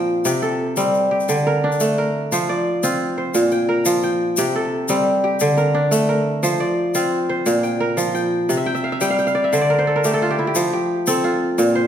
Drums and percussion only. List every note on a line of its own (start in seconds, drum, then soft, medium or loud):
0.25 shaker medium
0.76 shaker medium
0.94 shaker soft
1.20 shaker soft
1.29 shaker medium
1.37 shaker soft
1.72 shaker soft
1.80 shaker medium
2.32 shaker medium
2.83 shaker medium
3.34 shaker medium
3.51 shaker soft
3.85 shaker medium
4.03 shaker soft
4.37 shaker medium
4.88 shaker medium
5.40 shaker medium
5.57 shaker soft
5.92 shaker medium
6.43 shaker medium
6.95 shaker medium
7.46 shaker medium
7.64 shaker soft
7.98 shaker medium
8.15 shaker soft
8.49 shaker medium
8.76 shaker soft
9.01 shaker medium
9.18 shaker soft
9.27 shaker soft
9.53 shaker medium
10.04 shaker medium
10.55 shaker medium
11.07 shaker medium
11.58 shaker medium
11.67 shaker soft